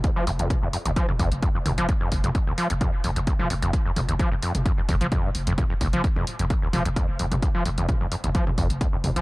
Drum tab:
HH |x-oxx-oxx-oxx-ox|x-oxx-oxx-oxx-ox|x-oxx-oxx-oxx-ox|x-oxx-oxx-oxx-ox|
T2 |----o----o----o-|---o----o----o--|--o----o----o---|o----o----o----o|
BD |o---o---o-o-o---|o-o-o---o---o---|o---o---o-o-o---|o-o-o---o---o---|

HH |x-oxx-oxx-oxx-ox|
T2 |----o----o----o-|
BD |o---o---o-o-o---|